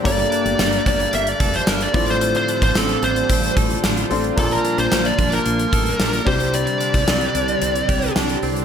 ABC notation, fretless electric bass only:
X:1
M:4/4
L:1/16
Q:1/4=111
K:F
V:1 name="Fretless electric bass" clef=bass
G,,,2 z G,,, G,,,2 G,,,2 G,,,2 F,,,2 G,,,2 A,,,2- | A,,,2 z A,,, A,,,2 A,,,2 A,,,2 A,,,2 A,,,2 A,,,2 | B,,,2 z B,,, B,,,2 B,,,2 B,,,2 A,,,2 B,,,2 C,,2- | C,,2 z C,, C,,2 C,,2 C,,2 C,,2 C,,2 C,,2 |]